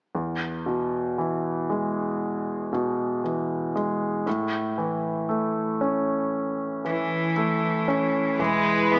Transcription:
0.15 grand piano E2
0.66 grand piano B2
1.18 grand piano E3
1.70 grand piano G#3
2.73 grand piano B2
3.24 grand piano E3
3.76 grand piano G#3
4.26 grand piano A2
4.78 grand piano E3
5.29 grand piano A3
5.81 grand piano C#4
6.85 grand piano E3, cello E3
7.36 grand piano A3
7.88 grand piano C#4
8.38 fingered electric bass E1, string section E3 E4 G#4 B4, grand piano E3, cello G#3
8.91 grand piano E3, cello B3

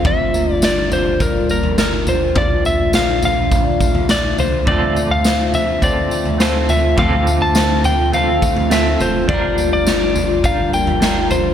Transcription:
Already playing: ambient pad D3, twelve-string acoustic guitar A3 C4 F4
0.04 sub bass G1, ambient pad A#2 G3 F4, twelve-string acoustic guitar F3, electric slide guitar E5, kick, floor tom
0.34 twelve-string acoustic guitar A#3, tambourine
0.48 sub bass G1
0.53 electric slide guitar D5
0.62 twelve-string acoustic guitar D4, electric slide guitar D5, snare, tambourine
0.91 twelve-string acoustic guitar F4, electric slide guitar C5, floor tom, tambourine
1.20 twelve-string acoustic guitar D4, electric slide guitar A#4, kick, floor tom, tambourine
1.49 sub bass G1, twelve-string acoustic guitar A#3, electric slide guitar A#4, tambourine
1.63 floor tom
1.78 twelve-string acoustic guitar D4, electric slide guitar A#4, snare, tambourine
2.07 twelve-string acoustic guitar F4, electric slide guitar C5, floor tom, tambourine
2.36 sub bass A#1, twelve-string acoustic guitar F3, ambient pad A3, electric slide guitar D5, kick, floor tom
2.65 twelve-string acoustic guitar A3, electric slide guitar E5, tambourine
2.79 sub bass A#1
2.93 twelve-string acoustic guitar D4, electric slide guitar F5, snare, tambourine
3.22 twelve-string acoustic guitar F4, electric slide guitar F5, floor tom, tambourine
3.52 twelve-string acoustic guitar D4, kick, floor tom, tambourine
3.81 sub bass A#1, twelve-string acoustic guitar A3, kick, tambourine
3.95 floor tom
4.09 twelve-string acoustic guitar D4, electric slide guitar D5, snare, tambourine
4.38 sub bass C2, twelve-string acoustic guitar F4, electric slide guitar C5, floor tom, tambourine
4.65 sub bass D2, clean electric guitar D3 A3 C4, ambient pad D3 A3 C4 F4, twelve-string acoustic guitar A3, electric slide guitar D5, kick, floor tom
4.70 clean electric guitar F4 A4
4.96 twelve-string acoustic guitar A3, tambourine
5.10 sub bass D2, electric slide guitar F5
5.24 twelve-string acoustic guitar C4, snare, tambourine
5.54 twelve-string acoustic guitar F4, electric slide guitar E5, floor tom, tambourine
5.82 clean electric guitar A3 C4 F4 A4, twelve-string acoustic guitar C4, electric slide guitar D5, kick, floor tom, tambourine
6.11 sub bass D2, twelve-string acoustic guitar A3, tambourine
6.25 floor tom
6.38 clean electric guitar A3 C4 F4, twelve-string acoustic guitar C4, electric slide guitar C5, snare, tambourine
6.43 clean electric guitar A4
6.69 twelve-string acoustic guitar F4, electric slide guitar E5, floor tom, tambourine
6.97 sub bass D2, clean electric guitar D3 A3 C4, twelve-string acoustic guitar A3, electric slide guitar F5, kick, floor tom
7.01 clean electric guitar F4 A4
7.27 twelve-string acoustic guitar A3, tambourine
7.41 sub bass D2, electric slide guitar A5
7.55 twelve-string acoustic guitar C4, snare, tambourine
7.84 twelve-string acoustic guitar F4, electric slide guitar G5, floor tom, tambourine
8.12 clean electric guitar A3 C4 F4, twelve-string acoustic guitar C4, electric slide guitar F5, floor tom, tambourine
8.16 clean electric guitar A4
8.42 sub bass D2, twelve-string acoustic guitar A3, kick, tambourine
8.57 floor tom
8.70 clean electric guitar A3 C4 F4, twelve-string acoustic guitar C4, electric slide guitar E5, snare, tambourine
8.74 clean electric guitar A4
8.99 sub bass F1, twelve-string acoustic guitar F4, electric slide guitar C5, floor tom, tambourine
9.28 sub bass G1, ambient pad A#2 G3, twelve-string acoustic guitar F3, clean electric guitar G3 D4, electric slide guitar D5, kick, floor tom
9.32 clean electric guitar F4 A#4
9.57 twelve-string acoustic guitar A#3, tambourine
9.71 sub bass G1, electric slide guitar D5
9.86 twelve-string acoustic guitar D4, snare, tambourine
10.15 twelve-string acoustic guitar F4, floor tom, tambourine
10.44 clean electric guitar G3 D4 F4, twelve-string acoustic guitar D4, electric slide guitar F5, kick, floor tom, tambourine
10.48 clean electric guitar A#4
10.72 sub bass G1, twelve-string acoustic guitar A#3, electric slide guitar G5, tambourine
10.87 floor tom
11.00 clean electric guitar G3 D4 F4, twelve-string acoustic guitar D4, snare, tambourine
11.05 clean electric guitar A#4
11.31 twelve-string acoustic guitar F4, electric slide guitar C5, floor tom, tambourine

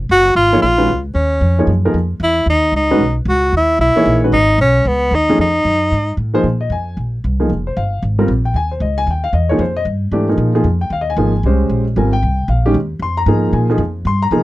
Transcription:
0.09 upright bass F#1, tenor saxophone F#4
0.35 upright bass G#1, tenor saxophone F4
0.52 grand piano F3 A#3 D#4 G#4 C#5
0.62 upright bass A#1, tenor saxophone F4
0.77 grand piano D#3 G#3 C#4 F#4 B4
0.89 upright bass C#2
1.14 upright bass D#2, tenor saxophone C#4
1.41 upright bass F2
1.59 grand piano F3 A#3 D#4 G#4 C#5
1.67 upright bass F#2
1.85 grand piano F3 A#3 D#4 G#4 A#4
1.94 upright bass F2
2.20 upright bass E2, tenor saxophone E4
2.46 upright bass D#2, tenor saxophone D#4
2.72 upright bass C#2
2.76 tenor saxophone D#4
2.91 grand piano D#3 G#3 C#4 F#4 B4
2.98 upright bass B1
3.25 upright bass C#2, tenor saxophone F#4
3.52 upright bass D#2
3.57 tenor saxophone E4
3.79 upright bass B1, tenor saxophone E4
3.96 grand piano E3 A#3 D#4 G#4 C#5, muted upright bass stroke
4.06 upright bass A#1
4.24 grand piano D#3 G#3 C#4 F#4 B4
4.32 upright bass G#1, tenor saxophone D#4
4.58 upright bass B1, tenor saxophone C#4
4.85 upright bass C#2, tenor saxophone B3
5.11 upright bass D#2, tenor saxophone D#4
5.29 grand piano F3 A3 C#4 D#4 G#4
5.38 upright bass F2, tenor saxophone D#4
5.65 upright bass F#2
5.92 upright bass G#2
6.17 upright bass A2
6.34 grand piano F3 A#3 D#4 G#4 C5
6.43 upright bass A#2
6.61 grand piano D#5
6.70 upright bass F2, grand piano G#5
6.97 upright bass A#1
7.24 upright bass C2
7.40 grand piano F3 A#3 D#4 G#4
7.49 upright bass F1
7.67 grand piano C5
7.77 upright bass G1, grand piano F5
8.02 upright bass G#1
8.19 grand piano G3 C4 F4 A#4
8.28 upright bass A#1
8.45 grand piano G5
8.54 upright bass D#2, grand piano G#5
8.71 grand piano C5
8.80 upright bass C#2, grand piano D#5
8.98 grand piano G#5
9.07 upright bass D#2, grand piano G5
9.24 grand piano F5
9.33 upright bass E2, grand piano D#5
9.49 grand piano F3 A#3 D#4 G#4 C#5
9.59 upright bass F2, grand piano C5
9.77 grand piano D#5
9.85 upright bass G2
10.12 upright bass G#2, grand piano E3 A3 D4 G4
10.29 grand piano F3 A#3 D#4 G#4
10.38 upright bass A#2
10.55 grand piano F3 A#3 D#4 G#4
10.64 upright bass F2
10.81 grand piano G5
10.90 upright bass D#2, grand piano F5
11.01 grand piano D#5
11.10 grand piano G#5
11.17 upright bass G#1, grand piano F3 A#3 D#4 G#4
11.43 upright bass C2, grand piano G#3 C#4 G4 C5
11.70 upright bass A#1
11.96 upright bass G#1, grand piano G3 C4 F4 A#4 G#5
12.13 grand piano G5
12.22 upright bass C2
12.48 upright bass A#1, grand piano F5
12.66 grand piano D#3 G#3 C#4 G4
12.74 upright bass D#2
12.99 upright bass F2, grand piano C6
13.17 grand piano A#5
13.26 upright bass G#2, grand piano F3 A#3 D#4 G#4
13.53 upright bass A#2, grand piano G#5
13.70 grand piano F3 A#3 D#4 G#4
13.78 upright bass F2
14.05 upright bass G2, grand piano C6
14.22 grand piano A#5
14.31 upright bass C3, grand piano F3 A#3 D#4 G#4

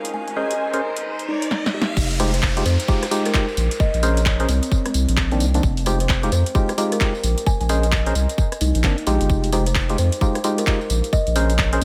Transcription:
Already playing: string section C#4 D#4 G#4 F5, riser
0.05 closed hi-hat
0.14 kalimba G#5
0.28 string section A#4, kalimba G#5, closed hi-hat
0.33 synth stab C#4 G#4 A#4 C5, string section C5 G#5, kalimba D#5
0.51 closed hi-hat
0.74 synth stab C#4 G#4 A#4 C5, closed hi-hat
0.82 string section D#4
0.96 closed hi-hat
1.19 closed hi-hat
1.25 kalimba D#4, string section D5
1.35 string section A#5
1.42 closed hi-hat
1.51 snare
1.66 snare
1.74 kalimba G4
1.82 snare
1.97 sub bass F1, kick, tambourine, crash, downlifter
2.11 open hi-hat, tambourine
2.20 synth stab G#3 D#4 F4 G4, kalimba C5, cross-stick, open hi-hat, tambourine
2.34 kalimba C5, closed hi-hat, tambourine
2.43 kick, clap, tambourine
2.57 synth stab G#3 D#4 F4 G4, closed hi-hat, tambourine
2.65 sub bass F2, kalimba C5, open hi-hat, tambourine
2.80 closed hi-hat, tambourine
2.88 synth stab G#3 D#4 F4 G4, kick, tambourine
3.03 cross-stick, closed hi-hat, tambourine
3.11 synth stab G#3 D#4 F4 G4, open hi-hat, tambourine
3.26 kalimba A#4, closed hi-hat, tambourine
3.34 synth stab G#3 D#4 F4 G4, kick, clap, tambourine
3.48 tambourine
3.57 sub bass A#1, open hi-hat, tambourine
3.71 closed hi-hat, tambourine
3.80 kalimba D#5, kick, tambourine
3.94 sub bass A#1, closed hi-hat, tambourine
4.03 synth stab C#4 G#4 A#4 C5, kalimba C#5, cross-stick, open hi-hat, tambourine
4.17 closed hi-hat, tambourine
4.26 kick, clap, tambourine
4.40 synth stab C#4 G#4 A#4 C5, closed hi-hat, tambourine
4.49 sub bass C2, kalimba C4, open hi-hat, tambourine
4.63 closed hi-hat, tambourine
4.71 kick, tambourine
4.86 kalimba C4, cross-stick, closed hi-hat, tambourine
4.94 sub bass C2, open hi-hat, tambourine
5.09 sub bass A#1, closed hi-hat, tambourine
5.17 kick, clap, open hi-hat, tambourine
5.31 synth stab D#3 A#3 C4 D4, closed hi-hat, tambourine
5.40 sub bass C2, open hi-hat, tambourine
5.54 synth stab D#3 A#3 C4 D4, closed hi-hat, tambourine
5.63 sub bass F1, kick, tambourine
5.77 open hi-hat, tambourine
5.86 synth stab G#3 D#4 F4 G4, kalimba C5, cross-stick, open hi-hat, tambourine
6.00 kalimba C5, closed hi-hat, tambourine
6.09 kick, clap, tambourine
6.23 synth stab G#3 D#4 F4 G4, closed hi-hat, tambourine
6.32 sub bass F2, kalimba C5, open hi-hat, tambourine
6.46 closed hi-hat, tambourine
6.55 synth stab G#3 D#4 F4 G4, kick, tambourine
6.69 cross-stick, closed hi-hat, tambourine
6.78 synth stab G#3 D#4 F4 G4, open hi-hat, tambourine
6.92 kalimba A#4, closed hi-hat, tambourine
7.01 synth stab G#3 D#4 F4 G4, kick, clap, tambourine
7.15 tambourine
7.23 sub bass A#1, open hi-hat, tambourine
7.38 closed hi-hat, tambourine
7.46 kalimba G#5, kick, tambourine
7.60 sub bass A#1, kalimba G#5, closed hi-hat, tambourine
7.69 synth stab C#4 G#4 A#4 C5, kalimba D#5, cross-stick, open hi-hat, tambourine
7.83 closed hi-hat, tambourine
7.92 kick, clap, tambourine
8.06 synth stab C#4 G#4 A#4 C5, closed hi-hat, tambourine
8.15 sub bass C2, open hi-hat, tambourine
8.29 closed hi-hat, tambourine
8.38 kick, tambourine
8.52 cross-stick, closed hi-hat, tambourine
8.61 sub bass C2, kalimba D#4, open hi-hat, tambourine
8.75 sub bass A#1, closed hi-hat, tambourine
8.84 sub bass G1, synth stab D#3 A#3 C4 D4, kick, clap, open hi-hat, tambourine
8.98 closed hi-hat, tambourine
9.07 sub bass A#1, synth stab G#3 D#4 F4 G4, kalimba G4, open hi-hat, tambourine
9.21 sub bass G1, closed hi-hat, tambourine
9.30 sub bass F1, kick, tambourine
9.44 open hi-hat, tambourine
9.53 synth stab G#3 D#4 F4 G4, kalimba C5, cross-stick, open hi-hat, tambourine
9.66 kalimba C5, closed hi-hat, tambourine
9.75 kick, clap, tambourine
9.89 synth stab G#3 D#4 F4 G4, closed hi-hat, tambourine
9.98 sub bass F2, kalimba C5, open hi-hat, tambourine
10.12 closed hi-hat, tambourine
10.21 synth stab G#3 D#4 F4 G4, kick, tambourine
10.35 cross-stick, closed hi-hat, tambourine
10.44 synth stab G#3 D#4 F4 G4, open hi-hat, tambourine
10.58 kalimba A#4, closed hi-hat, tambourine
10.67 synth stab G#3 D#4 F4 G4, kick, clap, tambourine
10.81 tambourine
10.90 sub bass A#1, open hi-hat, tambourine
11.04 closed hi-hat, tambourine
11.13 kalimba D#5, kick, tambourine
11.27 sub bass A#1, closed hi-hat, tambourine
11.36 synth stab C#4 G#4 A#4 C5, kalimba C#5, cross-stick, open hi-hat, tambourine
11.50 closed hi-hat, tambourine
11.59 kick, clap, tambourine
11.73 synth stab C#4 G#4 A#4 C5, closed hi-hat, tambourine

